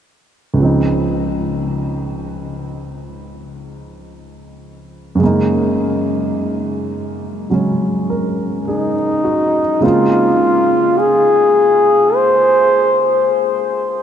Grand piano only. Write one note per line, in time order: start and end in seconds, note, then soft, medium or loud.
0.54 5.18 C#2 soft
0.54 5.17 C#3 soft
0.60 5.21 F3 soft
0.60 5.22 C4 soft
0.64 5.23 D#4 soft
5.15 9.80 F#2 soft
5.15 7.48 C#3 soft
5.20 7.50 G#3 soft
5.20 9.81 A#3 soft
5.26 9.83 D#4 soft
7.50 9.79 C#3 soft
7.50 9.83 F#3 soft
7.50 9.80 G#3 soft
7.50 9.84 C#4 soft
8.10 8.92 A#4 soft
8.68 9.60 G#4 soft
9.24 10.08 F#4 soft
9.80 14.03 C#3 soft
9.80 14.03 G#3 soft
9.80 14.03 A#3 soft
9.80 14.03 C4 soft
9.85 14.03 D#4 soft
9.85 14.03 F4 soft